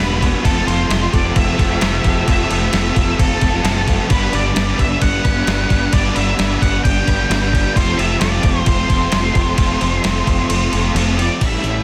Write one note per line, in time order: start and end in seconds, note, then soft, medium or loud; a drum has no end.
0.00 0.32 E1 medium
0.00 0.43 D3 medium
0.00 0.23 G3 medium
0.00 0.21 B3 medium
0.00 0.22 D4 medium
0.00 0.20 D4 medium
0.00 0.21 F#4 medium
0.00 0.19 B4 medium
0.00 0.19 B4 loud
0.00 snare loud
0.20 0.44 G3 medium
0.20 0.44 B3 medium
0.20 0.43 D4 medium
0.20 0.45 F#4 medium
0.20 0.43 B4 medium
0.20 kick medium
0.20 crash medium
0.43 0.62 F1 medium
0.43 0.89 F2 medium
0.43 0.89 C3 medium
0.43 0.70 F3 loud
0.43 0.68 A3 loud
0.43 0.67 C4 loud
0.43 0.67 F4 loud
0.43 0.66 A4 loud
0.43 0.66 A4 medium
0.43 kick loud
0.43 crash medium
0.66 0.84 F1 loud
0.66 0.90 F3 medium
0.66 0.91 A3 medium
0.66 0.91 C4 medium
0.66 0.90 F4 medium
0.66 0.91 A4 medium
0.66 1.12 A4 medium
0.66 1.14 C5 loud
0.66 crash medium
0.89 1.07 F1 loud
0.89 1.81 F2 medium
0.89 1.81 C3 medium
0.89 1.60 F3 medium
0.89 1.58 A3 loud
0.89 1.57 C4 loud
0.89 1.57 F4 medium
0.89 1.56 A4 medium
0.89 snare loud
0.89 crash medium
1.13 1.30 F1 medium
1.13 2.03 A4 medium
1.13 1.36 D5 loud
1.13 kick medium
1.13 crash medium
1.36 1.53 F1 loud
1.36 1.80 C4 medium
1.36 2.28 E5 loud
1.36 kick loud
1.36 crash medium
1.57 1.76 F1 medium
1.57 1.82 F3 medium
1.57 1.82 A3 medium
1.57 1.83 C4 medium
1.57 1.81 F4 medium
1.57 1.82 A4 medium
1.57 kick medium
1.57 crash medium
1.81 1.98 F1 medium
1.81 2.26 C3 medium
1.81 2.06 F3 medium
1.81 2.05 A3 medium
1.81 2.03 C4 medium
1.81 2.04 F4 loud
1.81 2.02 A4 loud
1.81 snare loud
1.81 crash medium
2.03 2.21 F1 medium
2.03 2.27 F3 medium
2.03 2.27 A3 medium
2.03 2.28 C4 medium
2.03 2.27 F4 medium
2.03 2.27 A4 medium
2.03 2.49 A4 medium
2.03 kick medium
2.03 crash medium
2.27 2.44 F1 medium
2.27 2.71 F2 medium
2.27 2.71 C3 loud
2.27 2.51 F3 loud
2.27 2.50 A3 loud
2.27 2.48 C4 loud
2.27 2.49 F4 loud
2.27 2.48 A4 medium
2.27 3.22 E5 loud
2.27 kick loud
2.27 crash medium
2.49 2.67 F1 medium
2.49 2.72 F3 medium
2.49 2.73 A3 medium
2.49 2.73 C4 medium
2.49 2.72 F4 medium
2.49 2.73 A4 medium
2.49 2.94 A4 medium
2.49 crash medium
2.72 2.90 F1 medium
2.72 3.64 F2 medium
2.72 3.63 C3 loud
2.72 3.42 F3 loud
2.72 3.41 A3 loud
2.72 3.39 C4 loud
2.72 3.41 F4 medium
2.72 3.39 A4 medium
2.72 snare loud
2.72 crash medium
2.95 3.13 F1 medium
2.95 3.87 A4 medium
2.95 kick medium
2.95 crash medium
3.19 3.36 F1 loud
3.19 3.64 C4 medium
3.19 3.84 A4 medium
3.19 kick loud
3.19 crash medium
3.40 3.59 F1 medium
3.40 3.63 F3 medium
3.40 3.64 A3 medium
3.40 3.65 C4 medium
3.40 3.64 F4 medium
3.40 3.64 A4 medium
3.40 kick medium
3.40 crash medium
3.64 3.97 F#1 medium
3.64 4.08 C3 medium
3.64 3.88 F3 medium
3.64 3.87 A3 medium
3.64 3.85 C4 medium
3.64 3.87 F4 loud
3.64 3.86 A4 loud
3.64 snare loud
3.64 crash loud
3.87 4.10 F3 medium
3.87 4.09 A3 medium
3.87 4.08 C4 medium
3.87 4.09 F4 medium
3.87 4.08 A4 medium
3.87 4.10 A4 medium
3.87 kick medium
3.87 crash medium
4.09 4.27 G1 medium
4.09 4.55 G2 loud
4.09 4.55 D3 loud
4.09 4.34 G3 loud
4.09 4.33 B3 loud
4.09 4.31 D4 loud
4.09 4.34 B4 medium
4.09 4.32 B4 loud
4.09 kick loud
4.09 crash medium
4.32 4.50 G1 medium
4.32 4.57 G3 medium
4.32 4.57 B3 medium
4.32 4.57 D4 medium
4.32 4.56 B4 medium
4.32 4.79 D5 loud
4.32 crash medium
4.55 4.73 G1 medium
4.55 5.47 G2 loud
4.55 5.45 D3 loud
4.55 5.25 G3 loud
4.55 5.24 B3 loud
4.55 5.22 D4 loud
4.55 5.22 B4 medium
4.55 snare loud
4.55 crash medium
4.78 4.95 G1 medium
4.78 5.68 D4 medium
4.78 5.03 E5 medium
4.78 kick medium
4.78 crash medium
5.02 5.18 G1 loud
5.02 5.96 F#5 loud
5.02 kick loud
5.02 crash medium
5.23 5.41 G1 medium
5.23 5.46 G3 medium
5.23 5.47 B3 medium
5.23 5.48 D4 medium
5.23 5.49 B4 medium
5.23 kick loud
5.23 crash medium
5.46 5.64 G1 medium
5.46 5.91 D3 medium
5.46 5.71 G3 medium
5.46 5.69 B3 medium
5.46 5.68 D4 medium
5.46 snare loud
5.46 crash medium
5.50 5.69 B4 loud
5.69 5.87 G1 loud
5.69 5.91 G3 medium
5.69 5.92 B3 medium
5.69 5.93 D4 medium
5.69 5.94 B4 medium
5.69 kick medium
5.69 crash medium
5.91 6.10 G1 medium
5.91 6.36 G2 loud
5.91 6.37 D3 medium
5.91 6.16 G3 loud
5.91 6.15 B3 loud
5.91 6.13 D4 loud
5.91 6.16 D5 loud
5.91 kick loud
5.91 crash medium
5.96 6.14 B4 loud
6.15 6.33 G1 medium
6.15 6.38 G3 medium
6.15 6.39 B3 medium
6.15 6.39 D4 medium
6.15 6.40 B4 medium
6.15 6.63 E5 loud
6.15 crash medium
6.37 6.55 G1 loud
6.37 7.29 G2 medium
6.37 7.28 D3 loud
6.37 7.08 G3 loud
6.37 7.07 B3 loud
6.37 7.06 D4 loud
6.37 snare loud
6.37 crash medium
6.41 7.06 B4 medium
6.61 6.79 G1 medium
6.61 7.52 D4 medium
6.61 6.83 F#5 loud
6.61 kick medium
6.61 crash medium
6.84 7.01 G1 loud
6.84 7.78 G5 loud
6.84 kick loud
6.84 crash medium
7.07 7.24 G1 medium
7.07 7.29 G3 medium
7.07 7.30 B3 medium
7.07 7.31 D4 medium
7.07 7.31 B4 medium
7.07 kick medium
7.07 crash medium
7.30 7.63 G1 medium
7.30 7.74 D3 medium
7.30 7.54 G3 medium
7.30 7.53 B3 medium
7.30 7.51 D4 medium
7.30 7.51 B4 loud
7.30 snare loud
7.30 crash loud
7.52 7.75 G3 medium
7.52 7.75 B3 medium
7.52 7.74 D4 medium
7.52 7.74 B4 medium
7.52 kick medium
7.52 crash medium
7.75 7.93 F1 loud
7.75 8.20 F2 medium
7.75 8.20 C3 medium
7.75 8.00 F3 loud
7.75 7.99 A3 loud
7.75 7.98 C4 loud
7.75 7.98 F4 loud
7.75 7.97 A4 loud
7.75 8.00 C5 loud
7.75 kick loud
7.75 crash medium
7.97 8.15 F1 medium
7.97 8.22 F3 medium
7.97 8.22 A3 medium
7.97 8.23 C4 medium
7.97 8.22 F4 medium
7.97 8.22 A4 medium
7.97 8.20 E5 loud
7.97 crash medium
8.20 8.38 F1 loud
8.20 9.12 F2 loud
8.20 9.11 C3 loud
8.20 8.91 F3 loud
8.20 8.90 A3 loud
8.20 8.88 C4 loud
8.20 8.88 F4 medium
8.20 8.88 A4 medium
8.20 8.68 D5 loud
8.20 snare loud
8.20 crash medium
8.43 8.61 F1 medium
8.43 9.34 C4 medium
8.43 kick medium
8.43 crash medium
8.66 8.83 F1 loud
8.66 10.92 C5 loud
8.66 kick loud
8.66 crash medium
8.88 9.06 F1 medium
8.88 9.12 F3 medium
8.88 9.14 A3 medium
8.88 9.14 C4 medium
8.88 9.13 F4 medium
8.88 9.14 A4 medium
8.88 kick medium
8.88 crash medium
9.12 9.30 F1 medium
9.12 9.57 C3 medium
9.12 9.37 F3 medium
9.12 9.36 A3 medium
9.12 9.34 C4 loud
9.12 9.35 F4 loud
9.12 9.34 A4 loud
9.12 snare loud
9.12 crash medium
9.34 9.52 F1 loud
9.34 9.57 F3 medium
9.34 9.59 A3 medium
9.34 9.59 C4 medium
9.34 9.58 F4 medium
9.34 9.58 A4 medium
9.34 kick medium
9.34 crash medium
9.58 9.75 F1 loud
9.58 10.02 F2 medium
9.58 10.03 C3 medium
9.58 9.82 F3 loud
9.58 9.81 A3 loud
9.58 9.79 C4 loud
9.58 9.81 F4 loud
9.58 9.79 A4 loud
9.58 kick loud
9.58 crash medium
9.81 9.98 F1 medium
9.81 10.04 F3 medium
9.81 10.04 A3 medium
9.81 10.05 C4 medium
9.81 10.04 F4 medium
9.81 10.05 A4 medium
9.81 crash medium
10.03 10.21 F1 medium
10.03 10.95 F2 medium
10.03 10.93 C3 loud
10.03 10.73 F3 loud
10.03 10.72 A3 loud
10.03 10.70 C4 loud
10.03 10.72 F4 medium
10.03 10.70 A4 medium
10.03 snare loud
10.03 crash medium
10.26 10.43 F1 medium
10.26 11.16 C4 medium
10.26 kick medium
10.26 crash medium
10.50 10.67 F1 loud
10.50 crash medium
10.72 10.89 F1 medium
10.72 10.94 F3 medium
10.72 10.95 A3 medium
10.72 10.95 C4 medium
10.72 10.96 F4 medium
10.72 10.97 A4 medium
10.72 crash medium
10.94 11.28 F1 medium
10.94 11.39 C3 medium
10.94 11.18 F3 medium
10.94 11.17 A3 medium
10.94 11.16 C4 medium
10.94 11.19 F4 loud
10.94 11.17 A4 loud
10.94 crash medium
11.17 11.41 F3 medium
11.17 11.40 A3 medium
11.17 11.39 C4 medium
11.17 11.41 F4 medium
11.17 11.40 A4 medium
11.17 crash medium
11.22 11.44 D5 medium
11.40 11.56 A1 medium
11.40 11.83 A2 medium
11.40 11.83 E3 medium
11.40 11.83 G3 medium
11.40 11.83 C#4 medium
11.40 11.83 E4 medium
11.40 11.83 A4 medium
11.40 kick loud
11.40 open hi-hat medium
11.40 crash medium
11.46 11.83 E5 medium
11.63 11.78 A1 medium
11.63 11.83 G3 medium
11.63 11.83 C#4 medium
11.63 11.83 E4 medium
11.63 open hi-hat soft